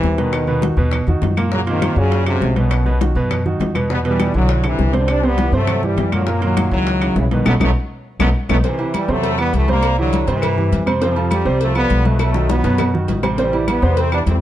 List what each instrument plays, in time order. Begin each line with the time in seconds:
Already playing: trombone section C3 E3, grand piano E3 E4 G4
0.03 upright bass D#2, high bongo, low bongo, high conga
0.18 grand piano B2 B3 B4, trombone section B2 D#3, high bongo, high conga, high timbale
0.33 high bongo, high timbale, claves
0.47 grand piano B2 B3 B4, high bongo, high conga
0.62 grand piano D#3 D#4 F#4, high bongo, high conga, high timbale
0.77 upright bass D#2, grand piano B2 B3 B4, high conga
0.91 high bongo, high conga, low conga, high timbale, claves
1.07 upright bass E2, grand piano D#3 D#4 F#4, high bongo, high conga, low conga
1.22 upright bass F#2, high bongo, low bongo, high conga, high timbale, low timbale
1.37 grand piano A#2 A#3 A#4, high bongo, high conga, high timbale, claves
1.52 grand piano A#2 A#3 A#4, trombone section C#3 F#3, high bongo, high conga
1.67 grand piano A#2 A#3 A#4, trombone section C3 D#3, high bongo, high conga, high timbale
1.82 high bongo, high conga, high timbale, claves
1.96 upright bass F#2, trombone section A#2 C#3, grand piano C#3 C#4 F#4
2.12 high bongo, high conga, high timbale
2.26 trombone section G#2 C3, grand piano C#3 C#4 F#4, high bongo, high conga, high timbale, claves
2.41 upright bass B1, high bongo, low bongo, high conga
2.56 trombone section F#2 B2, grand piano B2 B3 B4, high bongo, high conga, high timbale
2.71 high bongo, high timbale, claves
2.86 grand piano B2 B3 B4, high bongo, high conga
3.01 grand piano D#3 D#4 F#4, high bongo, high conga, high timbale
3.15 upright bass F#2, grand piano B2 B3 B4, high conga
3.31 high bongo, high conga, low conga, high timbale, claves
3.45 grand piano D#3 D#4 F#4, high bongo, high conga, low conga
3.60 upright bass E2, high bongo, low bongo, high conga, high timbale, low timbale
3.75 grand piano B2 B3 B4, high bongo, high conga, high timbale, claves
3.90 grand piano B2 B3 B4, trombone section G3 B3, high bongo
4.05 grand piano B2 B3 B4, trombone section E3 G3, high bongo, high conga, high timbale
4.20 high bongo, high conga, high timbale, claves
4.34 upright bass B1, grand piano D3 D4 E4, trombone section D3 F#3
4.49 high bongo, high conga, high timbale
4.64 trombone section C3 E3, grand piano D3 D4 E4, high bongo, high conga, high timbale, claves
4.78 upright bass C2, high bongo, low bongo, high conga
4.93 trombone section B2 D3, grand piano C3 C4 C5, high bongo, high conga, high timbale
5.08 trombone section G3 D4, high bongo, high conga, high timbale, claves
5.23 grand piano C3 C4 C5, trombone section G3 B3, high bongo, high conga
5.38 grand piano E3 E4 G4, high bongo, high conga, high timbale
5.52 upright bass G2, grand piano C3 C4 C5, trombone section F#3 A3, high conga
5.67 high bongo, high conga, low conga, high timbale, claves
5.83 grand piano E3 E4 G4, trombone section E3 G3, high bongo, high conga, low conga
5.97 upright bass F#2, high bongo, low bongo, high conga, high timbale
6.12 grand piano A#2 A#3 A#4, trombone section D3 F#3, high bongo, high conga, high timbale, claves
6.26 grand piano A#2 A#3 A#4, trombone section F#3 A#3, high bongo, high conga
6.41 grand piano A#2 A#3 A#4, trombone section D#3 F#3, high bongo, high conga, high timbale
6.57 high bongo, high conga, high timbale, claves
6.71 upright bass C#2, grand piano C#3 C#4 E4, trombone section D#3 F#3
6.87 high bongo, high conga, high timbale
7.01 grand piano C#3 C#4 E4, high bongo, high conga, high timbale, claves
7.15 upright bass B1, trombone section C#3 E3, high bongo, low bongo, high conga, low timbale
7.31 grand piano B2 B3 B4, trombone section B2 D#3, high bongo, high conga, high timbale
7.45 upright bass B1, trombone section F#3 A3 B3, grand piano A3 B3 D#4, high bongo, high conga, high timbale, claves
7.60 upright bass B1, trombone section F#3 A3 B3, grand piano A3 B3 D#4, high bongo, high conga, high timbale, claves
8.19 upright bass B1, trombone section F#3 A3 B3, grand piano A3 B3 D#4, high bongo, high conga, high timbale, claves
8.49 upright bass B1, trombone section F#3 A3 B3, grand piano A3 B3 D#4, high bongo, high conga, high timbale, claves
8.64 grand piano C3 C4 C5, trombone section C3 E3, cowbell, high conga, low agogo
8.79 grand piano E3 E4 G4, high conga, low agogo
8.94 trombone section E3 G3, cowbell, high conga, low agogo, claves
9.08 upright bass E2, grand piano C3 C4 C5, trombone section F#3 A3
9.23 cowbell, high conga, low agogo
9.38 grand piano E3 E4 G4, trombone section G3 B3, high conga, low agogo, claves
9.53 upright bass C2, trombone section E3 A3, cowbell, high conga, low timbale
9.68 grand piano C3 C4 C5, trombone section G3 A#3, high conga, low agogo
9.83 cowbell, low agogo, claves
9.98 trombone section D3 F#3, grand piano E3 E4 G4, high conga
10.13 cowbell, high conga, low agogo
10.27 upright bass G2, grand piano C3 C4 C5, trombone section C3 E3, cowbell, high conga, low agogo
10.42 cowbell, high conga, low conga, low agogo, claves
10.58 grand piano E3 E4 G4, high conga, low conga
10.72 upright bass F2, cowbell, high conga, low agogo
10.86 grand piano C3 C4 C5, high conga, low agogo, claves
11.02 grand piano C3 C4 C5, trombone section C3 F3, cowbell, low agogo
11.16 grand piano F3 F4 A4, high conga, low agogo
11.31 trombone section C3 G3, cowbell, high conga, low agogo, claves
11.45 upright bass C2, grand piano C3 C4 C5
11.60 trombone section F3 A3, cowbell, high conga, low agogo
11.75 grand piano F3 F4 A4, trombone section G3 B3, high conga, low agogo, claves
11.90 upright bass B1, cowbell, high conga
12.04 grand piano B2 B3 B4, trombone section F3 A3, high conga, low agogo
12.19 trombone section F#3 A3, cowbell, high bongo, high conga, low agogo, claves
12.34 grand piano D#3 D#4 F#4, high bongo, high conga
12.49 trombone section F#3 B3, cowbell, high bongo, high conga, low agogo
12.64 upright bass F#2, grand piano B2 B3 B4, cowbell, high bongo, high conga, low agogo
12.78 cowbell, low bongo, high conga, low conga, low agogo, claves
12.94 grand piano D#3 D#4 F#4, high conga, low conga
13.08 upright bass A1, cowbell, high conga, low timbale, low agogo
13.23 grand piano C3 C4 C5, low bongo, high conga, low agogo, claves
13.38 grand piano C3 C4 C5, trombone section E3 G3, cowbell, low agogo
13.53 grand piano E3 E4 G4, high conga, low agogo
13.68 trombone section G3 B3, cowbell, high conga, low agogo, claves
13.82 upright bass E2, grand piano C3 C4 C5
13.97 trombone section A3 C4, cowbell, high conga, low agogo
14.12 grand piano E3 E4 G4, trombone section B3 D4, high conga, low agogo, claves
14.26 upright bass E2, trombone section A3 C4, cowbell, high conga, low timbale